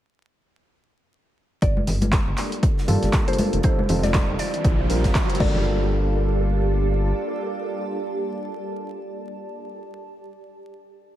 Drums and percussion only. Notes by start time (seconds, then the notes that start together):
1.62 kick, closed hi-hat
1.77 high conga
1.87 snare, closed hi-hat, open hi-hat, low conga
2.01 closed hi-hat, high conga
2.12 kick, snare, clap, closed hi-hat
2.37 clap, closed hi-hat, open hi-hat
2.52 closed hi-hat
2.63 kick, closed hi-hat
2.78 snare
2.88 closed hi-hat, open hi-hat, low conga
3.03 snare, closed hi-hat, high conga
3.13 kick, snare, clap, closed hi-hat
3.28 closed hi-hat
3.33 closed hi-hat
3.38 closed hi-hat, open hi-hat, high conga
3.53 closed hi-hat
3.63 kick, closed hi-hat
3.79 high conga
3.89 closed hi-hat, open hi-hat, low conga
4.03 snare, closed hi-hat, high conga
4.14 kick, snare, clap, closed hi-hat
4.39 closed hi-hat, open hi-hat
4.54 closed hi-hat
4.65 kick, closed hi-hat
4.90 closed hi-hat, open hi-hat
5.04 kick, snare, closed hi-hat, high conga
5.15 kick, snare, clap, closed hi-hat
5.29 closed hi-hat
5.35 closed hi-hat
5.39 kick, crash, high conga
5.54 low conga